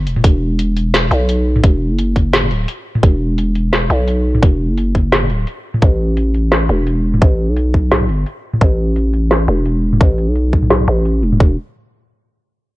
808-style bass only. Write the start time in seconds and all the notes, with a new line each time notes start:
0.06 E1
0.24 E1
1.11 B1
1.64 E1
1.90 F#1
2.51 D1
3.03 E1
3.90 B1
4.42 E1
4.69 F#1
5.30 D1
5.82 A1
6.69 E1
7.22 A1
7.49 B1
8.09 G1
8.61 A1
9.48 E1
10.01 A1
10.28 B1
10.88 A1
11.23 E1
11.40 E1